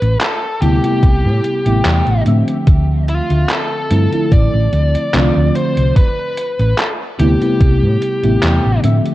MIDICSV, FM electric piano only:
0, 0, Header, 1, 2, 480
1, 0, Start_track
1, 0, Tempo, 821918
1, 1562, Time_signature, 4, 2, 24, 8
1, 5341, End_track
2, 0, Start_track
2, 0, Title_t, "FM electric piano"
2, 0, Program_c, 0, 5
2, 356, Note_on_c, 0, 48, 80
2, 358, Note_on_c, 0, 55, 72
2, 361, Note_on_c, 0, 57, 73
2, 363, Note_on_c, 0, 59, 72
2, 366, Note_on_c, 0, 64, 87
2, 456, Note_off_c, 0, 48, 0
2, 457, Note_off_c, 0, 55, 0
2, 459, Note_off_c, 0, 57, 0
2, 460, Note_off_c, 0, 59, 0
2, 461, Note_off_c, 0, 64, 0
2, 486, Note_on_c, 0, 48, 74
2, 488, Note_on_c, 0, 55, 69
2, 491, Note_on_c, 0, 57, 65
2, 493, Note_on_c, 0, 59, 65
2, 495, Note_on_c, 0, 64, 83
2, 937, Note_off_c, 0, 48, 0
2, 938, Note_off_c, 0, 55, 0
2, 940, Note_off_c, 0, 57, 0
2, 941, Note_off_c, 0, 59, 0
2, 942, Note_off_c, 0, 64, 0
2, 965, Note_on_c, 0, 48, 69
2, 968, Note_on_c, 0, 55, 67
2, 970, Note_on_c, 0, 57, 65
2, 972, Note_on_c, 0, 59, 64
2, 975, Note_on_c, 0, 64, 76
2, 1293, Note_off_c, 0, 48, 0
2, 1294, Note_off_c, 0, 55, 0
2, 1295, Note_off_c, 0, 57, 0
2, 1296, Note_off_c, 0, 59, 0
2, 1297, Note_off_c, 0, 64, 0
2, 1313, Note_on_c, 0, 50, 80
2, 1317, Note_on_c, 0, 53, 73
2, 1323, Note_on_c, 0, 57, 74
2, 1326, Note_on_c, 0, 60, 76
2, 1330, Note_on_c, 0, 76, 92
2, 2251, Note_off_c, 0, 50, 0
2, 2252, Note_off_c, 0, 53, 0
2, 2255, Note_off_c, 0, 57, 0
2, 2257, Note_off_c, 0, 60, 0
2, 2259, Note_off_c, 0, 76, 0
2, 2277, Note_on_c, 0, 50, 71
2, 2279, Note_on_c, 0, 53, 62
2, 2281, Note_on_c, 0, 57, 62
2, 2284, Note_on_c, 0, 60, 65
2, 2285, Note_on_c, 0, 64, 75
2, 2373, Note_off_c, 0, 50, 0
2, 2374, Note_off_c, 0, 53, 0
2, 2374, Note_off_c, 0, 57, 0
2, 2376, Note_off_c, 0, 60, 0
2, 2377, Note_off_c, 0, 64, 0
2, 2400, Note_on_c, 0, 50, 73
2, 2404, Note_on_c, 0, 53, 64
2, 2409, Note_on_c, 0, 57, 64
2, 2413, Note_on_c, 0, 60, 63
2, 2417, Note_on_c, 0, 64, 77
2, 2970, Note_off_c, 0, 50, 0
2, 2972, Note_off_c, 0, 53, 0
2, 2974, Note_off_c, 0, 57, 0
2, 2977, Note_off_c, 0, 60, 0
2, 2979, Note_off_c, 0, 64, 0
2, 2997, Note_on_c, 0, 50, 99
2, 2997, Note_on_c, 0, 53, 86
2, 3000, Note_on_c, 0, 57, 88
2, 3003, Note_on_c, 0, 60, 86
2, 3005, Note_on_c, 0, 65, 106
2, 3466, Note_off_c, 0, 50, 0
2, 3466, Note_off_c, 0, 53, 0
2, 3468, Note_off_c, 0, 57, 0
2, 3469, Note_off_c, 0, 60, 0
2, 3470, Note_off_c, 0, 65, 0
2, 4198, Note_on_c, 0, 48, 80
2, 4201, Note_on_c, 0, 55, 73
2, 4202, Note_on_c, 0, 57, 73
2, 4205, Note_on_c, 0, 59, 74
2, 4207, Note_on_c, 0, 64, 93
2, 4297, Note_off_c, 0, 48, 0
2, 4299, Note_off_c, 0, 55, 0
2, 4299, Note_off_c, 0, 57, 0
2, 4301, Note_off_c, 0, 59, 0
2, 4302, Note_off_c, 0, 64, 0
2, 4325, Note_on_c, 0, 48, 73
2, 4327, Note_on_c, 0, 55, 67
2, 4331, Note_on_c, 0, 57, 68
2, 4331, Note_on_c, 0, 59, 67
2, 4334, Note_on_c, 0, 64, 80
2, 4777, Note_off_c, 0, 48, 0
2, 4778, Note_off_c, 0, 55, 0
2, 4780, Note_off_c, 0, 57, 0
2, 4780, Note_off_c, 0, 59, 0
2, 4781, Note_off_c, 0, 64, 0
2, 4803, Note_on_c, 0, 48, 72
2, 4806, Note_on_c, 0, 55, 65
2, 4809, Note_on_c, 0, 57, 67
2, 4810, Note_on_c, 0, 59, 67
2, 4812, Note_on_c, 0, 64, 78
2, 5132, Note_off_c, 0, 48, 0
2, 5133, Note_off_c, 0, 55, 0
2, 5135, Note_off_c, 0, 57, 0
2, 5135, Note_off_c, 0, 59, 0
2, 5136, Note_off_c, 0, 64, 0
2, 5151, Note_on_c, 0, 50, 85
2, 5155, Note_on_c, 0, 53, 77
2, 5159, Note_on_c, 0, 57, 76
2, 5164, Note_on_c, 0, 60, 78
2, 5168, Note_on_c, 0, 76, 95
2, 5341, Note_off_c, 0, 50, 0
2, 5341, Note_off_c, 0, 53, 0
2, 5341, Note_off_c, 0, 57, 0
2, 5341, Note_off_c, 0, 60, 0
2, 5341, Note_off_c, 0, 76, 0
2, 5341, End_track
0, 0, End_of_file